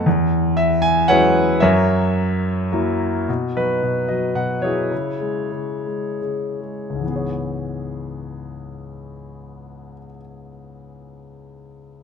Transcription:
0.06 1.59 E2 medium
0.57 0.84 E5 medium
0.82 1.07 G#5 loud
1.08 1.61 F#3 soft
1.08 1.61 G#3 soft
1.08 1.61 C#4 soft
1.08 1.61 E4 medium
1.08 1.58 B4 medium
1.08 1.58 C#5 medium
1.08 1.63 F#5 medium
1.60 3.25 F#2 medium
1.60 2.68 A#4 medium
1.60 2.68 C#5 medium
1.60 2.67 E5 medium
2.72 3.27 F#3 medium
2.72 3.27 A#3 soft
2.72 3.27 E4 medium
3.29 3.81 B2 soft
3.56 4.09 F#3 soft
3.56 4.32 D#4 soft
3.56 4.32 F#4 soft
3.56 4.06 B4 medium
3.83 4.34 B2 soft
4.08 4.60 F#3 soft
4.08 4.36 D#5 medium
4.35 4.90 B2 soft
4.35 4.61 F#5 medium
4.62 4.90 F#3 soft
4.62 6.19 E4 soft
4.62 6.19 G#4 soft
4.62 6.18 C#5 medium
4.91 5.50 C#3 soft
5.21 5.85 G#3 soft
5.52 6.20 C#3 soft
5.86 6.59 G#3 soft
6.22 7.00 C#3 soft
6.61 7.01 G#3 soft
6.90 9.94 C#2 soft
6.95 9.99 G#2 soft
7.00 10.04 E3 soft
7.06 10.10 B3 soft
7.10 10.14 G#4 soft
7.16 10.20 C#5 soft

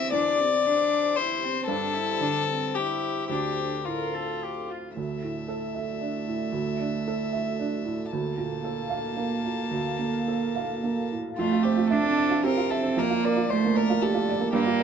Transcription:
0.00 0.12 E2 medium
0.00 0.75 E3 soft
0.00 0.15 C4 medium
0.00 1.67 D4 medium
0.00 3.30 G4 medium
0.00 4.97 C5 medium
0.00 0.12 E5 medium
0.12 1.63 E2 medium
0.12 0.41 D4 medium
0.12 1.18 D5 medium
0.40 0.67 C4 medium
0.65 1.68 D4 soft
0.65 1.18 D4 medium
1.16 1.45 E4 medium
1.16 1.66 C5 medium
1.44 1.70 C4 soft
1.67 3.25 G2 soft
1.67 4.93 D4 medium
1.67 1.95 D4 medium
1.67 2.76 A4 medium
1.93 2.23 E4 medium
2.20 3.29 D3 soft
2.20 2.47 D4 soft
2.48 2.78 C4 soft
2.75 3.31 E4 medium
2.75 3.28 G4 medium
3.29 4.93 D2 soft
3.29 3.80 D4 soft
3.29 3.87 G4 medium
3.29 4.98 A4 medium
3.85 4.97 A2 soft
3.85 4.69 F4 soft
3.85 4.16 A#4 medium
4.14 4.45 A4 soft
4.43 4.72 G4 soft
4.70 4.97 F4 soft
4.97 6.50 D2 soft
4.97 8.09 A3 soft
4.97 8.10 D4 soft
4.97 11.35 A4 soft
4.97 8.08 E5 soft
4.97 8.10 E5 soft
5.23 5.66 A2 soft
5.48 5.91 A4 soft
5.75 6.17 E5 soft
6.01 6.43 D4 soft
6.27 6.69 A2 soft
6.52 8.07 D2 soft
6.80 7.22 D4 soft
7.08 7.50 A4 soft
7.33 7.75 E5 soft
7.60 8.02 D4 soft
7.85 8.12 A2 soft
8.11 9.69 D2 soft
8.11 11.14 A#3 medium
8.11 11.39 A#3 medium
8.11 11.13 A5 medium
8.15 11.39 F5 medium
8.38 8.80 A#2 soft
8.64 9.06 A4 soft
8.90 9.33 F5 soft
9.17 9.61 A#3 soft
9.44 9.89 A#2 soft
9.71 11.33 D2 soft
9.99 10.44 A#3 soft
10.28 10.72 A4 soft
10.56 11.00 F5 soft
10.84 11.28 A#3 soft
11.11 11.38 A2 soft
11.37 12.94 F2 medium
11.37 14.83 F3 medium
11.37 11.92 A3 medium
11.37 12.93 C4 medium
11.37 11.64 F4 medium
11.37 12.93 E5 medium
11.52 11.73 F4 soft
11.62 11.89 G4 medium
11.62 11.86 C5 soft
11.77 11.99 F4 soft
11.90 12.46 D4 loud
11.90 12.43 A4 medium
11.90 12.12 E5 medium
12.04 12.26 C4 soft
12.17 12.39 E5 medium
12.31 12.52 F4 medium
12.44 13.00 C4 medium
12.44 12.57 G4 soft
12.44 12.72 A#4 medium
12.58 12.79 F4 medium
12.70 13.00 A4 medium
12.70 12.92 E5 medium
12.82 12.97 C4 soft
12.97 14.50 F2 medium
12.97 13.50 A#3 medium
12.97 14.83 D4 medium
12.97 13.26 A#4 medium
12.97 14.83 D5 medium
13.10 13.32 F4 medium
13.24 13.45 A#4 medium
13.24 13.51 D5 medium
13.37 13.58 F4 soft
13.50 14.26 A3 medium
13.50 13.77 C5 medium
13.50 13.71 D5 medium
13.65 13.84 A#3 soft
13.75 14.03 A#4 medium
13.75 13.96 D5 medium
13.90 14.10 F4 medium
14.02 14.15 G4 medium
14.02 14.53 A4 medium
14.15 14.36 F4 medium
14.29 14.49 D5 medium
14.40 14.53 A#3 medium
14.53 14.83 G2 medium
14.53 14.83 A#3 loud
14.53 14.83 G4 medium
14.66 14.83 F4 medium

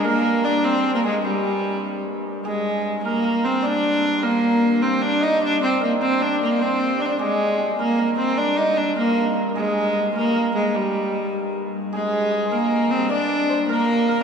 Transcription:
0.00 2.45 G2 medium
0.00 0.46 A#3 medium
0.00 1.03 G#4 medium
0.00 0.44 D5 medium
0.04 0.95 A#4 medium
0.04 0.42 A#4 medium
0.44 0.66 D4 medium
0.44 0.54 D5 medium
0.44 2.91 D5 medium
0.64 0.94 C4 medium
0.64 0.93 C5 medium
0.64 3.29 C5 medium
0.95 0.99 A#3 medium
0.95 1.04 A#4 medium
0.95 3.05 A#4 medium
1.03 1.23 G#3 medium
1.03 1.31 G#4 medium
1.03 1.15 G#4 medium
1.25 2.00 G3 medium
1.25 2.51 G4 medium
1.25 2.01 G4 medium
2.45 7.19 G2 medium
2.45 3.00 G#3 medium
2.45 5.48 G#4 medium
3.04 3.46 A#3 medium
3.04 3.24 A#4 medium
3.24 4.22 A#4 medium
3.43 3.67 C4 medium
3.43 4.16 C5 medium
3.62 4.25 D4 loud
3.62 5.01 D5 medium
4.16 4.82 C5 medium
4.23 4.83 A#3 loud
4.23 5.80 A#4 medium
4.82 5.03 C4 medium
4.82 5.61 C5 medium
5.01 5.24 D4 loud
5.01 5.26 D5 medium
5.20 5.42 D#4 loud
5.20 5.46 D#5 medium
5.40 5.62 D4 loud
5.40 6.20 D5 medium
5.61 5.81 C4 medium
5.61 6.01 C5 medium
5.80 5.92 A#3 medium
5.80 7.79 A#4 medium
6.01 6.23 C4 medium
6.01 6.59 C5 medium
6.20 6.41 D4 medium
6.20 6.98 D5 medium
6.43 6.64 A#3 medium
6.59 7.03 C4 medium
6.59 8.16 C5 medium
6.99 7.07 D4 medium
6.99 7.08 D5 medium
7.05 7.13 C4 medium
7.05 8.37 D5 medium
7.12 7.20 D4 medium
7.19 11.93 G2 medium
7.19 7.76 G#3 medium
7.19 7.58 G#4 medium
7.58 9.55 G#4 medium
7.79 8.16 A#3 medium
7.79 7.98 A#4 medium
7.99 8.96 A#4 medium
8.17 8.39 C4 medium
8.17 10.81 C5 medium
8.37 8.58 D4 medium
8.37 10.83 D5 medium
8.57 8.79 D#4 medium
8.77 8.96 D4 medium
8.96 9.38 A#3 medium
8.96 9.49 A#4 medium
9.49 10.15 A#4 medium
9.55 10.12 G#3 medium
9.55 10.80 G#4 medium
10.15 10.52 A#3 medium
10.15 10.35 A#4 medium
10.35 12.51 A#4 medium
10.55 10.77 G#3 medium
10.74 11.54 G3 medium
10.74 11.99 G4 medium
11.93 14.23 G2 medium
11.93 12.54 G#3 medium
11.93 12.31 G#4 medium
11.93 12.48 G#4 medium
12.31 14.23 G#4 medium
12.46 14.23 C5 medium
12.51 12.92 A#3 medium
12.51 13.11 A#4 medium
12.51 13.69 A#4 medium
12.91 13.11 C4 medium
13.10 13.66 D4 medium
13.10 13.49 D5 medium
13.10 14.23 D5 medium
13.50 13.58 C5 medium
13.69 14.22 A#3 loud
13.69 14.06 A#4 medium
13.69 14.08 A#4 medium
14.07 14.23 A#4 medium

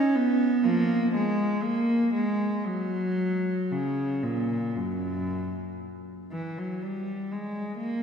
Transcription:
0.00 0.15 C#4 medium
0.15 0.64 B3 medium
0.64 1.10 F3 medium
0.64 1.13 A#3 medium
1.15 1.63 G#3 medium
1.64 2.14 A#3 medium
2.13 2.65 G#3 medium
2.66 3.72 F#3 medium
3.71 4.24 C#3 medium
4.23 4.76 A#2 medium
4.76 5.81 F#2 medium
6.32 6.56 E3 medium
6.58 6.83 F#3 medium
6.82 7.30 G3 medium
7.31 7.78 G#3 medium
7.77 8.03 A#3 medium

